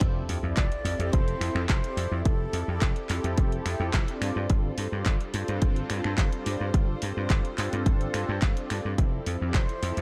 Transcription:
0.01 F1 F3 C4 E4 G4 A4, kick, closed hi-hat, sub drop
0.29 F2, open hi-hat
0.43 F2 C4 E4 G4 D5
0.57 F1 D5, kick, clap, closed hi-hat
0.72 closed hi-hat
0.85 F2 C4 E4 G4 A4, open hi-hat
0.99 F2, closed hi-hat
1.12 F1 C5, kick, closed hi-hat
1.28 closed hi-hat
1.41 F2 C4 E4 G4 A4, finger snap, open hi-hat
1.55 F2, finger snap
1.69 F1 C5, kick, clap, closed hi-hat
1.84 C4 E4 G4 D5, closed hi-hat
1.97 F2, open hi-hat
2.11 F2
2.25 F1 C4 E4 G4 A4, kick, closed hi-hat
2.53 F2, open hi-hat
2.68 F2 C4 E4 G4 D5
2.82 F1, kick, clap, closed hi-hat
2.96 closed hi-hat
3.09 F2 C4 E4 G4 A4, clap, open hi-hat
3.24 F2, closed hi-hat
3.38 F1, kick, closed hi-hat
3.52 closed hi-hat
3.66 F2 C4 E4 G4 A4, finger snap, open hi-hat
3.80 F2
3.94 F1, kick, clap, closed hi-hat
4.08 C4 D4 F4 D5, closed hi-hat
4.21 G2 G3 F4 C5, finger snap, open hi-hat
4.36 G2
4.50 G1 C4 D4 F4 A4, kick, closed hi-hat
4.78 G2, open hi-hat
4.92 G2 C4 D4 F4 D5
5.06 G1, kick, clap, closed hi-hat
5.21 closed hi-hat
5.34 G2 C4 D4 F4 A4, open hi-hat
5.48 G2, closed hi-hat
5.62 G1, kick, closed hi-hat
5.76 closed hi-hat
5.90 G2 C4 D4 F4 A4, finger snap, open hi-hat
6.04 G2, finger snap
6.18 G1, kick, clap, closed hi-hat
6.33 C4 D4 F4 D5, closed hi-hat
6.46 G2, open hi-hat
6.60 G2
6.74 G1 C4 D4 F4 A4, kick, closed hi-hat
7.02 G2, open hi-hat
7.17 G2 C4 D4 F4 D5
7.30 G1, kick, clap, closed hi-hat
7.45 closed hi-hat
7.58 G2 C4 D4 F4 A4, clap, open hi-hat
7.73 G2, closed hi-hat
7.86 G1, kick, closed hi-hat
8.01 closed hi-hat
8.14 G2 C4 D4 F4 A4, finger snap, open hi-hat
8.29 G2
8.42 G1, kick, clap, closed hi-hat
8.56 C4 D4 F4 D5, closed hi-hat
8.70 G2, finger snap, open hi-hat
8.85 G2
8.98 F1 F3 C4 E4 G4 A4, kick, closed hi-hat
9.26 F2, open hi-hat
9.41 F2 C4 E4 G4 D5
9.54 F1 C5, kick, clap, closed hi-hat
9.69 closed hi-hat
9.82 F2 C4 E4 G4 A4, open hi-hat
9.97 F2, closed hi-hat

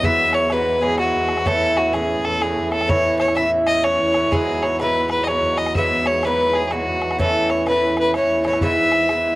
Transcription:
Already playing: E2
0.03 G#2 F#3 B3 E4 E5, bodhran
0.33 C#5, bodhran
0.50 G#2 F#3 B3 E4 B4, bodhran
0.81 G#2 F#3 B3 E4 G#4
0.98 G#2 F#3 B3 E4 F#4, bodhran
1.14 bodhran
1.28 bodhran
1.37 bodhran
1.45 A2 E3 C#4 E4 A4, bodhran
1.77 F#4, bodhran
1.93 A2 E3 C#4 E4 G#4, bodhran
2.25 A4, bodhran
2.41 A2 E3 C#4 E4 G#4, bodhran
2.57 bodhran
2.72 A4, bodhran
2.81 bodhran
2.88 A2 E3 C#4 E4 C#5, bodhran
3.19 C#5, bodhran
3.28 bodhran
3.35 A2 E3 C#4 E4 E5, bodhran
3.67 D#5, bodhran
3.83 A2 E3 C#4 E4 C#5, bodhran
3.99 bodhran
4.13 A2 E3 C#4 E4, bodhran
4.31 E2 G#2 F#3 B3 E4 G#4, bodhran
4.63 C#5, bodhran
4.79 G#2 F#3 B3 E4 B4, bodhran
5.10 B4, bodhran
5.24 G#2 D#5, bodhran
5.28 F#3 B3 E4 C#5
5.42 bodhran
5.58 D#5, bodhran
5.66 bodhran
5.75 G#2 F#3 B3 E4 E5, bodhran
6.06 C#5, bodhran
6.23 G#2 F#3 B3 E4 B4, bodhran
6.53 G#4, bodhran
6.67 G#2 G#4, bodhran
6.72 F#3 B3 E4 F#4
6.86 bodhran
7.02 bodhran
7.11 bodhran
7.19 A2 E3 C#4 E4 A4, bodhran
7.50 C#5, bodhran
7.66 A2 E3 C#4 E4 B4, bodhran
7.97 B4, bodhran
8.14 A2 E3 C#4 C#5, bodhran
8.18 E4
8.44 A2 E3 C#4 E4 C#5, bodhran
8.53 bodhran
8.61 G#2 E3 B3 E4 E5, bodhran
8.92 bodhran
9.09 G#2 E3 B3 E4, bodhran

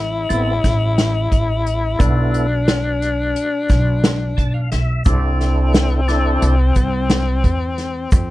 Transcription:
Already playing: A1 E4
0.29 A1 B3 C4 A4, closed hi-hat
0.64 A1, kick, snare, closed hi-hat, shaker
0.98 snare, closed hi-hat
1.32 A1, kick, closed hi-hat
1.66 closed hi-hat
1.99 B1 B3 D4 E4 A4, kick, closed hi-hat, shaker
2.34 closed hi-hat
2.68 snare, closed hi-hat, shaker
3.02 closed hi-hat
3.36 closed hi-hat
3.69 B1, kick, snare, closed hi-hat, shaker
4.04 snare, closed hi-hat
4.37 B1 A5, kick, closed hi-hat
4.54 F5
4.72 B1 E5, snare, closed hi-hat
5.05 C2 C4 D4 E4 A4, kick, closed hi-hat, shaker
5.41 snare, closed hi-hat
5.73 snare, closed hi-hat, shaker
6.08 D4 E4 A4, snare, closed hi-hat
6.42 C2, closed hi-hat
6.75 C2, kick, closed hi-hat, shaker
7.10 snare, closed hi-hat
7.44 E2, kick, closed hi-hat
7.78 snare, closed hi-hat
8.12 F2 C4, kick, closed hi-hat, shaker

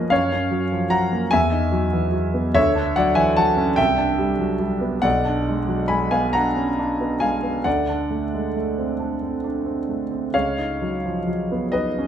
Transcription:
Already playing: D#3 F3 A#3 B3 C#4 A#4 B4 C#5 D#5
0.10 F#2 C#5 F5
0.32 C#4
0.51 F#3
0.72 F3
0.90 F#3 F#5 A#5
1.12 A#3
1.31 E2 E5 G#5
1.51 D#4
1.72 F#3
1.93 E3
2.12 F#3
2.34 B3
2.54 D2 C#5 E5
2.75 D4
2.96 F#3 D5 F#5
3.15 E3 E5 G#5
3.37 F#3 F#5 A5
3.57 C#4
3.76 C2 E5 G5
3.98 D4
4.18 G3
4.39 F#3
4.60 G3
4.81 B3
5.02 B1 D5 F#5
5.25 D4
5.48 G#3
5.68 F#3
5.88 G#3 G#5 B5
6.11 B3 F5 G#5
6.33 D4 F#5 A#5
6.57 C#4
6.79 D4
7.01 B3
7.20 G#3 F5 G#5
7.43 B3
7.64 D2 D5 F#5
7.89 D4
8.10 A3
8.34 G#3
8.56 A3
8.78 C4
8.99 D4
9.23 C4
9.44 D4
9.66 C4
9.89 A3
10.11 C4
10.34 C#2 C#5 F5
10.58 D#4
10.82 F#3
11.05 F3
11.27 F#3
11.52 B3
11.72 D#4 B4 D#5
11.98 C#4

